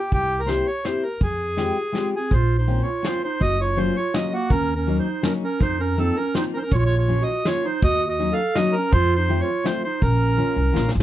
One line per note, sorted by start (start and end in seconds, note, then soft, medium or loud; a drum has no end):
0.00 0.12 G4 medium
0.12 0.59 C2 medium
0.12 0.41 G4 loud
0.12 kick medium
0.12 closed hi-hat soft
0.40 0.49 A#4 medium
0.46 0.66 A#3 medium
0.46 0.66 C4 soft
0.46 0.67 E4 medium
0.46 0.67 G4 medium
0.46 0.67 C5 medium
0.46 snare medium
0.46 closed hi-hat soft
0.67 0.85 C#5 medium
0.84 1.03 A#3 medium
0.84 1.03 C4 medium
0.84 1.04 E4 medium
0.84 1.04 G4 medium
0.84 1.04 C5 medium
0.84 snare medium
0.84 closed hi-hat soft
1.03 1.22 A#4 medium
1.21 1.69 F2 medium
1.21 2.10 G#4 medium
1.21 kick medium
1.21 closed hi-hat soft
1.57 1.76 G#3 medium
1.57 1.76 C4 soft
1.57 1.77 F4 soft
1.57 1.77 G4 medium
1.57 snare soft
1.57 closed hi-hat soft
1.92 2.12 G#3 medium
1.92 2.13 C4 medium
1.92 2.13 F4 medium
1.92 2.13 G4 medium
1.92 snare medium
1.92 closed hi-hat soft
2.16 2.32 C4 medium
2.16 2.33 G#4 medium
2.31 2.79 A#1 medium
2.31 2.56 F4 medium
2.31 2.57 C5 medium
2.31 kick medium
2.31 closed hi-hat soft
2.58 2.81 D#4 medium
2.58 2.82 C5 medium
2.67 2.87 A#3 medium
2.67 2.87 C4 soft
2.67 2.87 C#4 medium
2.67 2.87 F4 medium
2.67 closed hi-hat soft
2.83 3.04 F4 medium
2.83 3.07 C#5 medium
3.03 3.22 A#3 medium
3.03 3.22 C4 soft
3.03 3.23 C#4 medium
3.03 3.23 F4 medium
3.03 3.22 C5 medium
3.03 snare medium
3.03 closed hi-hat soft
3.24 3.41 D#4 medium
3.24 3.42 C5 medium
3.40 3.88 F#1 medium
3.40 3.59 F#4 medium
3.40 3.60 D#5 loud
3.40 kick medium
3.40 closed hi-hat soft
3.61 3.77 F4 medium
3.61 3.79 C#5 medium
3.76 3.96 F#3 medium
3.76 3.96 A#3 medium
3.76 3.96 C#4 medium
3.76 3.97 F4 medium
3.76 3.96 F4 medium
3.76 3.97 C5 medium
3.76 closed hi-hat soft
3.97 4.14 F4 medium
3.97 4.15 C#5 medium
4.14 4.33 F#3 medium
4.14 4.33 A#3 medium
4.14 4.33 C#4 soft
4.14 4.34 F4 medium
4.14 4.32 F#4 medium
4.14 4.33 D#5 medium
4.14 snare medium
4.14 closed hi-hat soft
4.33 4.50 A#3 medium
4.33 4.52 F#4 medium
4.50 4.98 D#2 loud
4.50 4.74 C#4 medium
4.50 4.74 A#4 loud
4.50 kick medium
4.50 closed hi-hat soft
4.75 4.98 C#4 medium
4.75 4.98 A#4 medium
4.87 5.06 F#3 medium
4.87 5.06 A#3 medium
4.87 5.07 C#4 soft
4.87 5.07 D#4 medium
4.87 closed hi-hat soft
4.99 5.22 D#4 medium
4.99 5.25 C5 medium
5.22 5.42 F#3 medium
5.22 5.43 A#3 soft
5.22 5.32 C#4 medium
5.22 5.43 C#4 soft
5.22 5.43 D#4 medium
5.22 5.33 A#4 medium
5.22 snare medium
5.22 closed hi-hat medium
5.43 5.60 C#4 medium
5.43 5.62 A#4 medium
5.60 6.09 F2 medium
5.60 5.79 D#4 medium
5.60 5.81 C5 medium
5.60 kick medium
5.60 closed hi-hat soft
5.80 5.97 C#4 medium
5.80 5.99 A#4 medium
5.97 6.17 F3 medium
5.97 6.17 A#3 soft
5.97 6.16 C4 medium
5.97 6.17 C4 soft
5.97 6.17 D#4 medium
5.97 6.18 A4 medium
5.97 closed hi-hat soft
6.17 6.34 C#4 medium
6.17 6.35 A#4 medium
6.34 6.54 F3 medium
6.34 6.54 A#3 medium
6.34 6.54 C4 soft
6.34 6.54 D#4 medium
6.34 6.45 D#4 medium
6.34 6.44 C5 medium
6.34 snare medium
6.34 closed hi-hat soft
6.54 6.60 C#4 medium
6.54 6.59 A#4 medium
6.54 6.63 C5 medium
6.62 6.73 C#4 medium
6.62 6.64 D#4 medium
6.62 6.72 A#4 medium
6.71 7.20 A#1 medium
6.71 6.79 F4 medium
6.71 6.76 C#5 loud
6.71 kick medium
6.71 closed hi-hat soft
6.78 6.85 F4 medium
6.78 6.84 C#5 medium
6.85 6.97 F4 medium
6.85 6.97 C#5 loud
6.97 7.20 F4 medium
6.97 7.23 C#5 medium
7.08 7.27 F3 medium
7.08 7.28 A#3 soft
7.08 7.28 C#4 medium
7.08 7.28 F4 medium
7.08 closed hi-hat soft
7.21 7.44 F#4 medium
7.21 7.47 D#5 medium
7.45 7.64 F3 medium
7.45 7.64 A#3 soft
7.45 7.65 C#4 medium
7.45 7.63 F4 medium
7.45 7.65 F4 medium
7.45 7.66 C#5 medium
7.45 snare medium
7.45 closed hi-hat soft
7.65 7.81 D#4 medium
7.65 7.84 C5 medium
7.82 8.30 D#2 medium
7.82 8.06 F#4 medium
7.82 8.08 D#5 loud
7.82 kick medium
7.82 closed hi-hat soft
8.08 8.30 F#4 medium
8.08 8.34 D#5 medium
8.19 8.38 F#3 medium
8.19 8.38 A#3 medium
8.19 8.38 C#4 medium
8.19 8.38 D#4 medium
8.19 closed hi-hat soft
8.32 8.55 A4 medium
8.32 8.57 F5 medium
8.55 8.74 F#3 medium
8.55 8.75 A#3 medium
8.55 8.75 C#4 medium
8.55 8.75 D#4 medium
8.55 8.74 F#4 medium
8.55 8.75 D#5 loud
8.55 snare medium
8.55 closed hi-hat medium
8.72 8.92 A#4 medium
8.78 8.93 C#4 medium
8.92 9.40 F2 loud
8.92 9.16 F4 loud
8.92 9.14 C5 loud
8.92 kick medium
8.92 closed hi-hat medium
9.16 9.40 D#4 medium
9.16 9.41 C5 medium
9.29 9.47 F3 medium
9.29 9.48 A3 medium
9.29 9.48 C4 medium
9.29 9.48 F4 medium
9.29 closed hi-hat soft
9.41 9.64 F4 medium
9.41 9.66 C#5 medium
9.64 9.83 F3 medium
9.64 9.83 A3 medium
9.64 9.84 C4 medium
9.64 9.84 F4 medium
9.64 9.83 C5 medium
9.64 snare medium
9.64 closed hi-hat soft
9.69 9.84 F4 medium
9.84 10.02 D#4 medium
9.84 10.02 C5 medium
10.02 10.38 A#1 medium
10.02 10.91 C#4 medium
10.02 10.90 A#4 medium
10.02 kick medium
10.02 closed hi-hat soft
10.37 10.56 F3 medium
10.37 10.57 A#3 medium
10.37 10.57 C#4 medium
10.37 10.57 F4 medium
10.37 closed hi-hat soft
10.56 10.73 C2 medium
10.73 10.93 A#1 medium
10.73 10.93 F3 medium
10.73 10.94 A#3 medium
10.73 10.94 C#4 medium
10.73 10.94 F4 medium
10.73 snare medium
10.89 snare soft
10.95 11.03 A1 medium